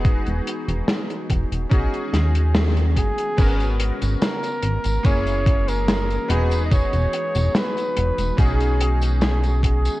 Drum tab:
CC |----------------|x---------------|----------------|
HH |xxxxxxxxxxxxxxxx|xxxxxxxxxxxxxxxx|xxxxxxxxxxxxxxxx|
TB |----------------|xx-xxx-xxx-xxx-x|xx-xxx-xxx-xxx-x|
SD |----o-----o-o---|----o-------o---|----o-------o---|
BD |o-----o-o-----o-|o-------o-o-----|o-------o-----o-|